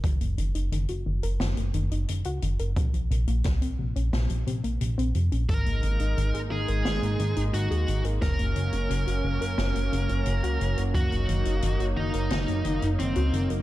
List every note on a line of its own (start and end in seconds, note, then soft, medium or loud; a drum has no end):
0.04 0.18 F#1 loud
0.04 0.15 D#3 medium
0.04 kick loud
0.04 closed hi-hat medium
0.21 0.36 F#1 medium
0.21 0.37 A#3 medium
0.21 closed hi-hat medium
0.38 0.53 F#1 medium
0.38 0.49 D#3 medium
0.38 closed hi-hat medium
0.55 0.70 F#1 medium
0.55 0.71 D#4 medium
0.55 closed hi-hat medium
0.72 0.87 F#1 loud
0.72 0.88 D#3 medium
0.72 closed hi-hat medium
0.88 1.04 F#1 medium
0.88 0.96 F#4 medium
0.88 closed hi-hat soft
1.06 1.21 F#1 medium
1.06 1.18 D#3 medium
1.23 1.38 F#1 medium
1.23 1.39 A#4 medium
1.23 closed hi-hat medium
1.40 1.55 F#1 loud
1.40 1.47 D#3 medium
1.40 snare loud
1.40 closed hi-hat loud
1.57 1.72 F#1 medium
1.57 1.64 A#3 medium
1.57 closed hi-hat medium
1.74 1.89 F#1 medium
1.74 1.90 D#3 loud
1.74 closed hi-hat medium
1.91 2.06 F#1 medium
1.91 2.08 D#4 medium
1.91 closed hi-hat medium
2.08 2.23 F#1 loud
2.08 2.25 D#3 medium
2.08 closed hi-hat loud
2.24 2.40 C#2 medium
2.24 2.37 F#4 loud
2.24 closed hi-hat medium
2.42 2.57 F#1 medium
2.42 2.54 D#3 medium
2.42 closed hi-hat medium
2.59 2.74 F#1 medium
2.59 2.76 A#4 medium
2.59 closed hi-hat soft
2.76 2.91 A#1 loud
2.76 2.88 C3 medium
2.76 kick loud
2.76 closed hi-hat loud
2.94 3.08 A#1 medium
2.94 3.10 F3 medium
2.94 closed hi-hat medium
3.11 3.25 A#1 medium
3.11 3.22 C3 medium
3.11 closed hi-hat medium
3.28 3.42 A#1 medium
3.28 3.44 A#3 medium
3.28 closed hi-hat medium
3.44 3.60 A#1 loud
3.44 3.61 C3 medium
3.44 kick loud
3.44 snare medium
3.44 closed hi-hat loud
3.62 3.76 A#1 medium
3.62 3.69 C4 medium
3.62 closed hi-hat medium
3.79 3.93 A#1 medium
3.79 3.90 C3 medium
3.96 4.10 A#1 medium
3.96 4.12 C#4 medium
3.96 closed hi-hat soft
4.13 4.28 A#1 loud
4.13 4.20 C3 medium
4.13 snare loud
4.13 closed hi-hat medium
4.30 4.45 A#1 medium
4.30 4.37 F3 medium
4.30 closed hi-hat medium
4.47 4.62 A#1 medium
4.47 4.63 C3 loud
4.47 closed hi-hat medium
4.64 4.79 A#1 medium
4.64 4.80 A#3 medium
4.64 closed hi-hat medium
4.81 4.96 A#1 loud
4.81 4.97 C3 medium
4.81 closed hi-hat medium
4.98 5.13 A#1 medium
4.98 5.10 C4 loud
4.98 closed hi-hat medium
5.15 5.30 F2 medium
5.15 5.27 C3 medium
5.15 closed hi-hat medium
5.32 5.47 A#1 medium
5.32 5.48 C#4 medium
5.32 closed hi-hat soft
5.49 5.64 G#1 loud
5.49 5.61 D#3 medium
5.49 8.19 G#3 medium
5.49 13.62 A#3 medium
5.49 8.19 D#4 medium
5.49 6.38 A#4 medium
5.49 kick loud
5.49 closed hi-hat loud
5.66 5.81 G#1 medium
5.66 5.82 A#3 medium
5.66 closed hi-hat medium
5.83 5.98 G#1 medium
5.83 5.95 D#3 medium
5.83 closed hi-hat medium
6.00 6.15 G#1 medium
6.00 6.16 D#4 medium
6.00 closed hi-hat medium
6.17 6.32 G#1 loud
6.17 6.34 D#3 medium
6.17 closed hi-hat medium
6.34 6.49 G#1 medium
6.34 6.41 G#4 medium
6.34 closed hi-hat medium
6.51 6.66 G#1 medium
6.51 6.63 D#3 medium
6.51 7.40 G#4 medium
6.68 6.83 G#1 medium
6.68 6.85 A#4 medium
6.68 closed hi-hat soft
6.85 7.00 G#1 loud
6.85 6.92 D#3 medium
6.85 snare loud
6.85 closed hi-hat medium
7.02 7.17 G#1 medium
7.02 7.09 A#3 medium
7.02 closed hi-hat medium
7.19 7.34 G#1 medium
7.19 7.36 D#3 loud
7.19 closed hi-hat medium
7.36 7.51 G#1 medium
7.36 7.53 D#4 medium
7.36 closed hi-hat medium
7.54 7.68 G#1 loud
7.54 7.70 D#3 medium
7.54 8.01 F#4 medium
7.54 closed hi-hat medium
7.71 7.85 D#2 medium
7.71 7.82 G#4 loud
7.71 closed hi-hat soft
7.88 8.03 G#1 medium
7.88 7.99 D#3 medium
7.88 closed hi-hat medium
8.05 8.20 G#1 medium
8.05 8.21 A#4 medium
8.05 closed hi-hat soft
8.22 8.37 F#1 loud
8.22 8.33 C#3 medium
8.22 13.62 F#3 medium
8.22 10.92 C#4 medium
8.22 10.81 A#4 medium
8.22 kick loud
8.22 snare medium
8.22 closed hi-hat medium
8.39 8.54 F#1 medium
8.39 8.55 A#3 medium
8.39 closed hi-hat medium
8.56 8.71 F#1 medium
8.56 8.68 C#3 medium
8.56 closed hi-hat medium
8.73 8.88 F#1 medium
8.73 8.89 C#4 medium
8.73 closed hi-hat medium
8.90 9.05 F#1 loud
8.90 9.06 C#3 medium
8.90 closed hi-hat medium
9.07 9.22 F#1 medium
9.07 9.14 F#4 medium
9.07 closed hi-hat medium
9.24 9.39 F#1 medium
9.24 9.36 C#3 medium
9.41 9.56 F#1 medium
9.41 9.57 A#4 medium
9.41 closed hi-hat medium
9.58 9.73 F#1 loud
9.58 9.65 C#3 medium
9.58 snare loud
9.58 closed hi-hat loud
9.75 9.90 F#1 medium
9.75 9.82 A#3 medium
9.75 closed hi-hat medium
9.92 10.07 F#1 medium
9.92 10.09 C#3 loud
9.92 closed hi-hat medium
10.09 10.24 F#1 medium
10.09 10.26 C#4 medium
10.09 closed hi-hat medium
10.26 10.41 F#1 loud
10.26 10.43 C#3 medium
10.26 closed hi-hat medium
10.44 10.58 C#2 medium
10.44 10.55 F#4 loud
10.44 closed hi-hat medium
10.61 10.75 F#1 medium
10.61 10.72 C#3 medium
10.61 closed hi-hat medium
10.78 10.92 F#1 medium
10.78 10.94 A#4 medium
10.78 closed hi-hat soft
10.95 11.09 F#1 loud
10.95 11.06 D#3 medium
10.95 13.62 D#4 medium
10.95 11.83 F#4 loud
10.95 kick loud
10.95 closed hi-hat medium
11.12 11.26 F#1 medium
11.12 11.28 A#3 medium
11.12 closed hi-hat medium
11.29 11.43 F#1 medium
11.29 11.40 D#3 medium
11.29 closed hi-hat medium
11.45 11.61 F#1 medium
11.45 11.62 D#4 medium
11.45 closed hi-hat medium
11.62 11.78 F#1 loud
11.62 11.79 D#3 medium
11.62 closed hi-hat loud
11.80 11.95 F#1 medium
11.80 11.87 F#4 medium
11.80 closed hi-hat medium
11.97 12.12 F#1 medium
11.97 12.08 D#3 medium
11.97 12.86 D#4 medium
12.14 12.29 F#1 medium
12.14 12.30 A#4 medium
12.14 closed hi-hat soft
12.30 12.46 F#1 loud
12.30 12.38 D#3 medium
12.30 snare loud
12.30 closed hi-hat medium
12.48 12.63 F#1 medium
12.48 12.55 A#3 medium
12.48 closed hi-hat soft
12.65 12.80 F#1 medium
12.65 12.81 D#3 loud
12.65 closed hi-hat medium
12.82 12.97 F#1 medium
12.82 12.98 D#4 medium
12.82 closed hi-hat medium
12.99 13.14 F#1 loud
12.99 13.15 D#3 medium
12.99 13.47 C4 medium
12.99 closed hi-hat medium
13.16 13.31 C#2 medium
13.16 13.28 F#4 loud
13.16 closed hi-hat medium
13.33 13.48 F#1 medium
13.33 13.45 D#3 medium
13.33 closed hi-hat medium
13.50 13.62 F#1 medium
13.50 13.62 A#4 medium
13.50 closed hi-hat soft